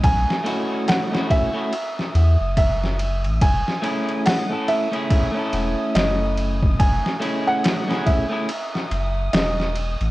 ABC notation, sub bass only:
X:1
M:4/4
L:1/16
Q:"Swing 16ths" 1/4=71
K:F#dor
V:1 name="Sub bass" clef=bass
B,,, z8 z E,, F,,,4 A,,, | F,,, z8 z E,,, z F,,,4 | F,,, z8 z F,,,2 E,,,3 A,,, |]